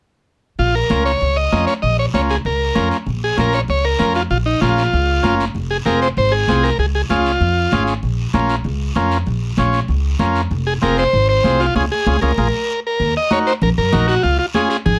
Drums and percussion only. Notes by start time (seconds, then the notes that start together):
0.59 high conga, long guiro
0.90 high conga, short guiro
1.06 short guiro
1.21 high conga, long guiro
1.52 high conga, short guiro
1.67 short guiro
1.84 high conga, long guiro
2.14 high conga, short guiro
2.30 short guiro
2.45 high conga, long guiro
2.75 high conga, short guiro
2.91 short guiro
3.06 high conga, long guiro
3.38 high conga, short guiro
3.53 short guiro
3.68 high conga, long guiro
3.99 high conga, short guiro
4.14 short guiro
4.31 high conga, long guiro
4.62 high conga, short guiro
4.78 short guiro
4.93 high conga, long guiro
5.24 high conga, short guiro
5.40 short guiro
5.55 high conga, long guiro
5.86 high conga, short guiro
6.02 short guiro
6.17 high conga, long guiro
6.48 high conga, short guiro
6.64 short guiro
6.79 high conga, long guiro
7.10 high conga, short guiro
7.26 short guiro
7.42 high conga, long guiro
7.71 high conga, short guiro
7.87 short guiro
8.03 high conga, long guiro
8.33 high conga, short guiro
8.49 short guiro
8.64 high conga, long guiro
8.95 high conga, short guiro
9.11 short guiro
9.26 high conga, long guiro
9.57 high conga, short guiro
9.73 short guiro
9.88 high conga, long guiro
10.19 high conga, short guiro
10.35 short guiro
10.51 high conga, long guiro
10.82 high conga, short guiro
10.97 short guiro
11.14 high conga, long guiro
11.44 high conga, short guiro
11.60 short guiro
11.76 high conga, long guiro
12.06 high conga, long guiro
12.22 high conga, long guiro
12.38 high conga, long guiro
13.00 high conga, long guiro
13.31 high conga, short guiro
13.47 short guiro
13.62 high conga, low conga, long guiro
13.93 high conga, low conga, short guiro
14.09 short guiro
14.23 high conga, long guiro
14.54 high conga, short guiro
14.70 short guiro
14.86 high conga, low conga, long guiro